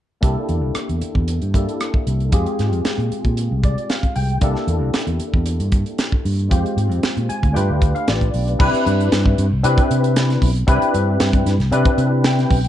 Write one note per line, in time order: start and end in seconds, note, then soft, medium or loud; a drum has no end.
0.21 0.35 C2 medium
0.21 1.51 A#3 medium
0.21 1.51 D4 medium
0.21 1.51 E4 soft
0.21 1.52 G4 medium
0.21 1.52 A4 medium
0.21 kick medium
0.21 closed hi-hat medium
0.49 0.62 E2 medium
0.49 closed hi-hat soft
0.62 0.74 C2 medium
0.75 cross-stick medium
0.75 closed hi-hat medium
0.89 1.01 E2 medium
0.89 closed hi-hat soft
1.01 muted fingered electric bass stroke soft
1.01 closed hi-hat medium
1.15 1.38 E2 medium
1.15 kick medium
1.28 closed hi-hat medium
1.42 1.65 G2 medium
1.42 closed hi-hat soft
1.54 2.33 A#3 soft
1.54 2.33 D4 soft
1.54 2.33 E4 soft
1.54 2.32 G4 soft
1.54 2.34 A4 soft
1.54 kick medium
1.54 closed hi-hat medium
1.69 closed hi-hat soft
1.80 cross-stick medium
1.80 closed hi-hat medium
1.94 kick medium
2.07 2.30 C2 medium
2.07 closed hi-hat medium
2.20 closed hi-hat soft
2.31 2.44 F2 medium
2.31 4.38 G#3 medium
2.31 4.38 C4 soft
2.31 4.38 F4 medium
2.31 4.39 G4 medium
2.31 4.39 G#4 medium
2.31 kick medium
2.31 closed hi-hat medium
2.46 closed hi-hat soft
2.59 2.73 G#2 medium
2.59 snare soft
2.59 closed hi-hat soft
2.73 2.84 F2 medium
2.73 closed hi-hat soft
2.85 muted fingered electric bass stroke soft
2.85 snare medium
2.85 closed hi-hat medium
2.98 3.09 A#2 medium
2.98 closed hi-hat soft
3.11 muted fingered electric bass stroke soft
3.11 closed hi-hat soft
3.24 3.48 A#2 medium
3.24 kick medium
3.24 closed hi-hat soft
3.37 closed hi-hat medium
3.51 3.74 C2 medium
3.63 3.89 D5 medium
3.63 kick medium
3.63 closed hi-hat soft
3.78 closed hi-hat soft
3.90 4.14 F5 soft
3.90 snare medium
3.90 closed hi-hat medium
4.03 kick medium
4.03 closed hi-hat soft
4.16 4.39 C2 medium
4.16 4.40 G5 medium
4.16 open hi-hat medium
4.29 closed hi-hat soft
4.41 4.54 C2 medium
4.41 6.47 A#3 medium
4.41 6.47 D4 medium
4.41 6.48 E4 soft
4.41 6.48 G4 medium
4.41 6.48 A4 medium
4.41 kick medium
4.41 closed hi-hat medium
4.55 snare soft
4.67 4.81 E2 medium
4.67 closed hi-hat soft
4.81 4.93 C2 medium
4.94 snare medium
4.94 closed hi-hat medium
5.07 5.19 E2 medium
5.07 closed hi-hat soft
5.20 muted fingered electric bass stroke soft
5.20 closed hi-hat soft
5.34 5.57 E2 medium
5.34 kick medium
5.46 closed hi-hat medium
5.59 5.83 G2 medium
5.59 closed hi-hat soft
5.72 kick medium
5.72 closed hi-hat medium
5.86 closed hi-hat soft
5.98 snare medium
5.98 closed hi-hat medium
6.12 kick medium
6.25 6.48 G2 medium
6.25 open hi-hat medium
6.39 closed hi-hat soft
6.49 6.63 F2 medium
6.49 7.52 G#3 medium
6.49 7.53 C4 medium
6.49 7.53 F4 medium
6.49 7.54 G4 medium
6.49 7.54 C5 medium
6.49 kick medium
6.49 closed hi-hat medium
6.66 closed hi-hat soft
6.77 6.91 G#2 medium
6.77 closed hi-hat soft
6.91 7.02 F2 medium
6.91 closed hi-hat soft
7.03 muted fingered electric bass stroke soft
7.03 snare medium
7.03 closed hi-hat medium
7.17 7.28 A#2 medium
7.17 closed hi-hat soft
7.29 7.54 G#5 medium
7.29 muted fingered electric bass stroke soft
7.29 closed hi-hat medium
7.43 7.54 D2 medium
7.43 kick medium
7.43 closed hi-hat soft
7.53 7.68 G2 medium
7.53 8.57 A3 medium
7.53 8.57 D4 medium
7.53 8.57 F4 medium
7.53 8.58 G4 medium
7.53 8.58 B4 medium
7.53 7.92 G5 medium
7.53 closed hi-hat medium
7.70 7.93 D2 medium
7.82 kick medium
7.82 closed hi-hat medium
7.95 8.07 F5 medium
7.95 closed hi-hat soft
8.08 8.31 A1 medium
8.08 8.57 D5 medium
8.08 snare loud
8.08 closed hi-hat medium
8.21 kick medium
8.21 closed hi-hat soft
8.34 8.58 B1 medium
8.34 open hi-hat medium
8.48 closed hi-hat soft
8.59 8.72 C2 medium
8.59 9.45 C4 medium
8.59 9.45 D4 medium
8.59 9.45 E4 medium
8.59 9.46 G4 medium
8.59 9.46 B4 medium
8.59 kick loud
8.59 crash medium
8.73 muted fingered electric bass stroke soft
8.73 closed hi-hat soft
8.86 9.09 G2 medium
8.86 closed hi-hat medium
9.00 closed hi-hat soft
9.12 9.35 G2 medium
9.12 snare medium
9.12 closed hi-hat medium
9.26 kick medium
9.38 9.50 G2 medium
9.38 closed hi-hat medium
9.52 9.63 C2 medium
9.63 9.76 C3 loud
9.63 10.49 C4 medium
9.63 10.49 D4 medium
9.63 10.50 E4 medium
9.63 10.50 G4 medium
9.63 10.50 B4 medium
9.63 closed hi-hat medium
9.78 kick medium
9.78 closed hi-hat soft
9.90 10.36 C3 medium
9.90 closed hi-hat medium
10.04 closed hi-hat soft
10.16 snare medium
10.16 closed hi-hat medium
10.30 snare soft
10.30 closed hi-hat soft
10.42 10.65 B1 medium
10.42 kick medium
10.42 open hi-hat medium
10.56 closed hi-hat soft
10.67 10.80 C2 medium
10.67 11.53 C4 medium
10.67 11.53 D4 medium
10.67 11.54 E4 medium
10.67 11.54 G4 medium
10.67 11.54 B4 medium
10.67 kick loud
10.67 closed hi-hat medium
10.82 closed hi-hat soft
10.94 11.17 G2 medium
10.94 closed hi-hat medium
11.20 11.43 G2 medium
11.20 snare loud
11.20 closed hi-hat medium
11.33 kick medium
11.33 closed hi-hat soft
11.46 11.58 G2 medium
11.46 snare soft
11.46 closed hi-hat medium
11.59 11.70 C2 medium
11.59 snare soft
11.59 closed hi-hat soft
11.71 11.84 C3 medium
11.71 12.58 C4 medium
11.71 12.58 D4 medium
11.71 12.58 E4 medium
11.71 12.58 G4 medium
11.71 12.58 B4 medium
11.71 closed hi-hat medium
11.85 kick medium
11.85 closed hi-hat soft
11.98 12.44 C3 loud
11.98 closed hi-hat medium
12.24 12.68 G5 medium
12.24 snare loud
12.24 closed hi-hat medium
12.39 snare soft
12.39 closed hi-hat soft
12.50 12.68 B1 medium
12.50 kick medium
12.50 open hi-hat medium
12.64 closed hi-hat soft